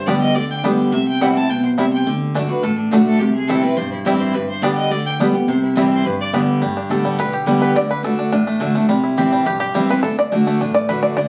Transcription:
Already playing: G1 G2
0.06 D3 G3 B3 D4 G4 D5
0.21 D#5
0.35 D2 D3 D5
0.50 G5
0.63 D3 G3 B3 D4 G4
0.92 C2 C3 E5
1.08 G5
1.20 E3 G3 C4 E4 F#5
1.35 C4 E4 A5
1.50 B1 B2 G5
1.65 C5
1.78 C2 C3 G3 C4 E4 E5
1.93 G5
2.06 D2 D3
2.35 G1 D3 A3 D4 F#4
2.49 D4 F#4 B4
2.63 A1 A2 A4
2.78 D4
2.91 B1 D3 A3 D4 F#4
3.06 A4
3.19 C2 C3 G4
3.34 G#4
3.47 C2 E3 G3 C4 E4 A4
3.62 C4 E4 B4
3.76 B1 G2 C5
3.92 E4
4.05 A1 E3 G3 C4 E4 G4
4.20 C5
4.33 G1 G2 B4
4.49 C5
4.62 D3 G3 B3 D4 G4 D5
4.77 D#5
4.91 D2 D3 D5
5.06 G5
5.19 D3 G3 B3 D4 G4
5.34 B3 G4
5.48 C2 C3 C5
5.64 E4
5.75 E3 G3 C4 E4 G4
5.92 C5
6.05 G1 G2 B4
6.21 D5
6.33 D3 G3 B3 D4 G4
6.62 G1 G2 G3
6.77 D4
6.89 A1 D3 G3 B3 G4 A4
7.05 G3
7.19 B1 D3 B4
7.33 G4
7.46 C2 D3 G3 B3 G4
7.62 B4
7.75 D2 D3 D5
7.91 B4
8.03 D3 A3 D4 F#4 A4
8.19 D4
8.32 A1 A2 D4
8.47 A3
8.60 D3 A3 D4 F#4
8.75 A3 D4 F#4
8.89 C2 C3 G3
9.04 E4
9.17 A1 E3 G3 C4 E4 G4
9.32 G3
9.46 B1 G2 G4
9.60 G4
9.74 C2 E3 G3 C4 E4
9.89 C4 E4 B4
10.03 D2 D3 A4
10.19 D5
10.32 D3 A3 D4 F#4
10.47 A3
10.60 A1 A2 D4
10.74 D5
10.89 D3 A3 D4 F#4 B4
11.03 D5
11.17 D2 D3 D5

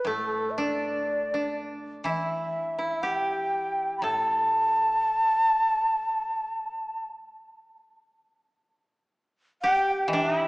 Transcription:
0.05 A2 A3 A4
0.50 E5
0.58 D4 D5
1.34 D4
2.04 E3 E4 E5
2.78 E4
3.02 G4 F#5
3.16 G5
3.98 B5
4.02 A2 A4 A5
9.62 G4 G5
10.03 G5
10.08 E3 D#5
10.13 D4
10.19 E5
10.38 E4

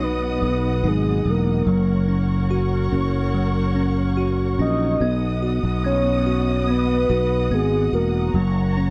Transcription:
Already playing: B1 B2 F#3 B3 F#4 D#5 F#5 D#6
0.01 D#4 B4
0.42 B1 F#3
0.84 G#1 D#4
0.88 G#4
1.25 E1 F#3
1.30 A#4
1.67 F#1 F#3 A#4 C#5 F#5 C#6
2.08 C#4
2.51 F#4
2.92 F#1 C#4
3.34 F#3
3.76 C#4
4.17 F#4
4.59 A#1 C#4 D#5
5.01 B1 B3 D#5 F#5 D#6
5.43 F#4
5.63 B1
5.85 B3 C#5
6.27 F#4
6.67 B3 B4
7.10 B1 F#4
7.51 G#1 B3 G#4
7.93 E1 F#4 A#4
8.34 F#1 F#3 C#5 A#5 C#6
8.77 C#4

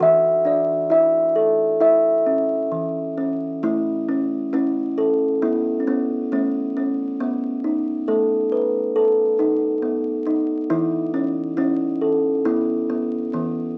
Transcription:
0.00 E3 E5
0.45 D4 D5
0.90 E4 E5
1.36 A4
1.80 E4 E5
2.26 C#4
2.72 E3
3.18 C#4
3.63 A3 E4
4.09 C#4
4.53 C#4 E4
4.98 A4
5.42 B3 E4
5.80 C#4
5.87 B3 C#4
6.32 A3 C#4
6.77 C#4
7.20 B3
7.64 D#4
8.08 A3 A4
8.52 B4
8.96 A4
9.39 D#4
9.82 B3
10.27 D#4
10.70 E3 E4
11.14 C#4
11.57 C#4 E4
12.01 A4
12.45 B3 E4
12.90 B3
13.33 E3 B3

